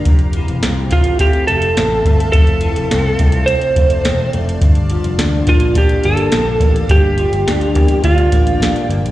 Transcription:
<<
  \new Staff \with { instrumentName = "Ambient pad" } { \time 4/4 \key f \major \tempo 4 = 105 << { <f'' a''>1~ | <f'' a''>1 | g'1~ | g'1 | } \\ { e''1 | d''1 | f''1 | g''1 | } >> }
  \new Staff \with { instrumentName = "Electric slide guitar" } { \time 4/4 \key f \major r4. f'8 g'8 a'4. | a'2 c''4. r8 | r4. f'8 g'8 a'4. | g'2 f'4. r8 | }
  \new Staff \with { instrumentName = "Clean electric guitar" } { \time 4/4 \key f \major f,8 e8 c'8 a8 c'8 a8 c'8 a8 | f,8 e8 c'8 a8 c'8 a8 c'8 a8 | g,8 f8 d'8 bes8 d'8 bes8 c'16 d'16 bes8 | g,8 f8 d'8 bes8 d'8 bes8 d'8 bes8 | }
  \new Staff \with { instrumentName = "Picked electric bass" } { \clef bass \time 4/4 \key f \major f,,8. e,,16 c,8 a,,4 f,,8 a,,8 g,,8 | f,,8. f,,16 c,8 c,8. r16 f,,8 e,,8 f,,8 | g,,8. f,,16 d,8 bes,,4 g,,8 bes,,8 a,,8 | g,,8. g,,16 d,8 e,8 d,8 a,,8 bes,,16 r16 g,,16 bes,,16 | }
  \new DrumStaff \with { instrumentName = "Drums" } \drummode { \time 4/4 <hh bd>16 hh16 hh16 hh16 <hh sn>8 <hh bd sn>16 hh16 <hh bd>16 hh16 hh16 hh16 <hh sn>8 <hh bd>16 hh16 | <hh bd>16 hh16 hh16 hh16 <hh sn>8 <hh bd>16 hh16 hh16 hh16 <hh bd>16 hh16 <hh sn>8 hh16 hh16 | <hh bd>16 hh16 hh16 hh16 <hh sn>8 <hh bd sn>16 hh16 <hh bd>16 hh16 hh16 hh16 <hh sn>8 <hh bd>16 hh16 | <hh bd>8 hh16 hh16 <hh sn>16 hh16 <hh bd>16 hh16 <hh bd>16 hh16 <hh bd>16 hh16 <hh sn>16 hh16 hh16 hh16 | }
>>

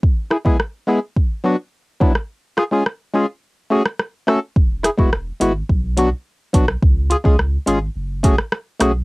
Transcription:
<<
  \new Staff \with { instrumentName = "Synth stab" } { \time 4/4 \key fis \minor \tempo 4 = 106 r8 <e' gis'>16 <gis b e' gis'>16 r8 <gis b e' gis'>16 r8. <fis b d' fis'>16 r8. <fis b d' e'>16 r16 | r8 <eis' gis'>16 <gis cis' eis' gis'>16 r8 <gis cis' eis' gis'>16 r8. <a cis' fis' gis'>16 r8. <a cis' fis' a'>16 r16 | r8 <e' gis'>16 <gis b e' fis'>16 r8 <gis b e' fis'>16 r8. <fis b d' fis'>16 r8. <fis b d' fis'>16 r16 | r8 <eis' gis'>16 <gis cis' eis' gis'>16 r8 <gis cis' eis' gis'>16 r8. <a cis' fis' gis'>16 r8. <a cis' fis' gis'>16 r16 | }
  \new Staff \with { instrumentName = "Sub bass" } { \clef bass \time 4/4 \key fis \minor r1 | r1 | e,,8. e,,8. gis,,8 b,,4 r8 b,,8 | cis,8. cis,8. gis,,8 fis,,4 r8 b,,8 | }
  \new DrumStaff \with { instrumentName = "Drums" } \drummode { \time 4/4 bd8 ss16 bd16 ss4 bd4 r8 bd16 ss16 | r8 ss8 ss4 r8. ss16 ss8 ss8 | bd8 <hh ss>16 bd16 ss8 hh8 bd8 hh8 r8 <hh bd>16 ss16 | bd8 hh16 bd16 ss8 hh8 r8 <hh bd>16 ss16 ss8 <hh ss>8 | }
>>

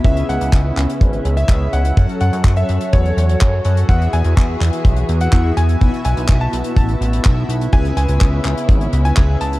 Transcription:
<<
  \new Staff \with { instrumentName = "Electric grand piano" } { \time 4/4 \key cis \minor \tempo 4 = 125 e''8 fis''8 r4. r16 e''8 r16 fis''8~ | fis''16 r16 fis''8 r16 e''8 r16 cis''4.~ cis''16 r16 | fis''8 gis''8 r4. r16 fis''8 r16 gis''8~ | gis''16 r16 gis''8 r16 a''8 r16 a''4.~ a''16 r16 |
gis''8 gis''8 r4. r16 gis''8 r16 a''8 | }
  \new Staff \with { instrumentName = "Analog polysynth" } { \time 4/4 \key cis \minor <cis cis' gis' b' e''>2. <cis cis' gis' b' e''>4 | <fis cis' fis' a' fis''>2. r8 <cis' fis' a' fis''>8 | <e b fis' gis' e''>2. <e b fis' gis' e''>4 | <b, b e' fis' e''>2. <b, b e' fis' e''>4 |
<cis cis' gis' b' e''>2. <cis cis' gis' b' e''>4 | }
  \new Staff \with { instrumentName = "String section" } { \time 4/4 \key cis \minor <b cis' e'>1 | <fis fis' a' cis''>1 | <e e' gis'>1 | b1 |
<b cis' e'>1 | }
  \new Staff \with { instrumentName = "Analog synth bass" } { \clef bass \time 4/4 \key cis \minor cis,8 cis,16 cis,16 cis,8 cis,16 r16 gis,,8 cis,8 cis,8 cis,8 | fis,16 r16 fis,16 fis,16 fis,8 fis,16 r16 e,8 e,8 fis,8 fis,8 | e,8 e,16 e,16 e,8 e,16 r16 b,,8 e,8 e,8 e,8 | b,,16 r16 b,,16 b,,16 b,,8 b,,16 r16 a,,8 a,,8 b,,8 b,,8 |
cis,8 cis,16 cis,16 cis,8 cis,16 r16 gis,,8 cis,8 cis,8 cis,8 | }
  \new DrumStaff \with { instrumentName = "Drums" } \drummode { \time 4/4 <hh bd>16 hh16 hh16 hh16 <hc hh bd>8 <hc hh>16 hh16 <hh bd>16 hh16 hh16 hh16 <hc hh bd>8 hh16 hh16 | <hh bd>16 hh16 hh16 hh16 <hc hh bd>16 hh16 hh16 hh16 <hh bd>16 hh16 hh16 hh16 <hc hh bd>8 hh16 hh16 | <hh bd>16 hh16 hh16 hh16 <hc hh bd>8 <hc hh>16 hh16 <hh bd>16 hh16 hh16 hh16 <hc hh bd>8 hh16 hh16 | <hh bd>16 hh16 hh16 hh16 <hc hh bd>8 hh16 hh16 <hh bd>16 hh16 hh16 hh16 <hc hh bd>8 hh16 hh16 |
<hh bd>16 hh16 hh16 hh16 <hc hh bd>8 <hc hh>16 hh16 <hh bd>16 hh16 hh16 hh16 <hc hh bd>8 hh16 hh16 | }
>>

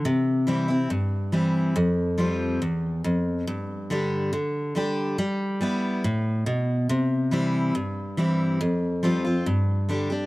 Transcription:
\new Staff \with { instrumentName = "Steel-string acoustic guitar" } { \clef bass \time 4/4 \key c \lydian \tempo 4 = 140 << { r4 <e g c' e'>8 <c' e'>8 r4 <e g c' e'>4 | r4 <f g c' f'>4 r2 | r4 <d g d' g'>4 r4 <d g d' g'>4 | r4 <g b e'>4 r2 |
r4 <e g c' e'>4 r4 <e g c' e'>4 | r4 <f g c' f'>8 <c' f'>8 r4 <d g d' g'>8 <d' g'>8 | } \\ { c2 g,2 | f,2 e,4 f,4 | g,2 d2 | g2 a,4 b,4 |
c2 g,2 | f,2 g,2 | } >> }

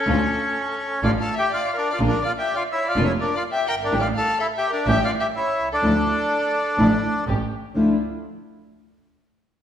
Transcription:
<<
  \new Staff \with { instrumentName = "Violin" } { \time 4/4 \key d \minor \tempo 4 = 125 a'2 \tuplet 3/2 { d''8 f''8 e''8 d''8. bes'8 d''16~ } | \tuplet 3/2 { d''16 bes'8 d''8 e''16~ e''16 d''8 cis''8 d''16~ d''16 cis''8 bes'8 d''16~ d''16 e''8 g''8 bes'16~ } | \tuplet 3/2 { bes'16 d''8 f''8. a'8 e''8 bes'8 e''8 d''8 e''8 } cis''8. a'16~ | a'2. r4 |
r1 | }
  \new Staff \with { instrumentName = "Bandoneon" } { \time 4/4 \key d \minor <cis' cis''>2 \tuplet 3/2 { <f' f''>8 <a' a''>8 <g' g''>8 <f' f''>8. <d' d''>8 <f' f''>16~ } | \tuplet 3/2 { <f' f''>16 <d' d''>8 <f' f''>8 <g' g''>16~ <g' g''>16 <f' f''>8 <e' e''>8 <f' f''>16~ <f' f''>16 <e' e''>8 <d' d''>8 <f' f''>16~ <f' f''>16 <g' g''>8 <bes' bes''>8 <d' d''>16~ } | \tuplet 3/2 { <d' d''>16 <f' f''>8 <a' a''>8. <e' e''>8 <g' g''>8 <d' d''>8 <g' g''>8 <f' f''>8 <g' g''>8 } <e' e''>8. <d' d''>16~ | <d' d''>2. r4 |
r1 | }
  \new Staff \with { instrumentName = "String section" } { \time 4/4 \key d \minor <a d' f'>8 r4. <a d' f'>8 r4. | <bes d' f'>8 r4. <bes d' f'>8 r4. | <a d' g'>8 r4. <a cis' g'>8 r4. | <f d' e'>8 r4. <f d' e'>8 r8 <a cis' g'>8 r8 |
<d' e' f'>8 r2. r8 | }
  \new Staff \with { instrumentName = "Nylon-string guitar" } { \time 4/4 \key d \minor <d a d' f'>8 r4. <d a d' f'>8 r4. | <d bes d' f'>8 r4. <d bes d' f'>8 r4. | <d g d' e'>8 r4. <e g cis' e'>8 r4. | <d f a d' e'>8 r4. <d f a d' e'>8 r4. |
<d f a d' e'>8 r2. r8 | }
  \new Staff \with { instrumentName = "Double bass" } { \clef bass \time 4/4 \key d \minor d,8 r4. a,,8 r4. | bes,,8 r4. f,,8 r4 g,,8 | a,,8 r4. a,,8 r4 c,8 | d,8 r4. a,,8 r8 a,,8 r8 |
d,8 r2. r8 | }
>>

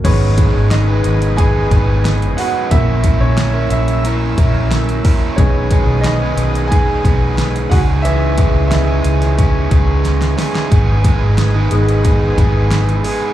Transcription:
<<
  \new Staff \with { instrumentName = "Analog synth pad" } { \time 4/4 \key gis \minor \tempo 4 = 90 << { dis'''1 | e'''1 | dis'''1~ | dis'''1 |
dis'''1 | } \\ { <b' dis'' gis''>1 | <cis'' e'' ais''>1 | <b' dis'' gis''>2.~ <b' dis'' gis''>8 <cis'' gis''>8~ | <cis'' gis''>1 |
<b' dis'' gis''>1 | } >> }
  \new Staff \with { instrumentName = "Grand piano" } { \time 4/4 \key gis \minor <cis' cis''>4 <dis' dis''>4 <gis' gis''>4. <fis' fis''>8 | e''8. <cis' cis''>8. <e' e''>2 r8 | <cis' cis''>4 <dis' dis''>4 <gis' gis''>4 r8 <fis' fis''>8 | <e e''>4 <gis' e''>2 r4 |
r1 | }
  \new Staff \with { instrumentName = "Grand piano" } { \time 4/4 \key gis \minor <gis b dis'>8 r2. r8 | <ais cis' e'>1 | <gis b dis'>2.~ <gis b dis'>8 r8 | r4 <e cis' dis''>4. r4. |
r4. <gis b dis'>4. r4 | }
  \new Staff \with { instrumentName = "Overdriven electric guitar" } { \time 4/4 \key gis \minor <gis b dis' b'>8 <gis, dis gis b dis' b'>8. <gis, dis gis b dis' b'>8. <gis b dis' b'>8 <gis b dis' b'>4 <gis b dis' b'>8 | <ais cis' e' ais'>8 <ais cis' e' ais'>8. <ais cis' e' ais'>8. <ais cis' e' ais'>8 <ais cis' e' ais'>4 <ais cis' e' ais'>8 | <gis b dis' gis'>8 <b, dis gis b dis' gis'>8. <b, dis gis b dis' gis'>8. <gis b dis' gis'>8 <gis b dis' gis'>4 <gis cis' dis' gis'>8 | <gis cis' dis' gis'>8 <cis e gis cis' dis' gis'>8. <cis e gis cis' dis' gis'>8. <gis cis' dis' gis'>8 <gis cis' dis' gis'>4 <gis cis' dis' gis'>8 |
<gis b dis' gis'>8 <gis, dis gis b dis' gis'>8. <gis, dis gis b dis' gis'>8. <gis b dis' gis'>8 <gis b dis' gis'>4 <gis b dis' gis'>8 | }
  \new Staff \with { instrumentName = "Fingered electric bass" } { \clef bass \time 4/4 \key gis \minor gis,,8. gis,,8. gis,,4 gis,,4 r8 | ais,,8. ais,,8. ais,,4 ais,,4 r8 | b,,8. b,,8. b,,4 b,,4 cis,8~ | cis,8. cis,8. cis,4 cis,4 r8 |
gis,,8. gis,,8. gis,,4 gis,,4 r8 | }
  \new DrumStaff \with { instrumentName = "Drums" } \drummode { \time 4/4 <cymc hh bd>8 <hh bd>8 <hh sn>8 hh16 hh16 <hh bd>8 <hh bd>8 <hh sn>16 hh16 hho8 | <hh bd>8 <hh bd>8 <hh sn>8 hh16 hh16 hh8 <hh bd>8 <hh sn>16 hh16 <hho bd>8 | <hh bd>8 <hh bd>8 <hh sn>8 hh16 hh16 <hh bd>8 <hh bd>8 <hh sn>16 hh16 <hho bd>8 | hh8 <hh bd>8 <hh sn>8 hh16 <hh sn>16 <hh bd>8 <hh bd>8 <hh sn>16 <hh sn>16 <hho sn>16 sn16 |
<hh bd>8 <hh bd>8 <hh sn>8 hh16 hh16 <hh bd>8 <hh bd>8 <hh sn>16 hh16 hho8 | }
>>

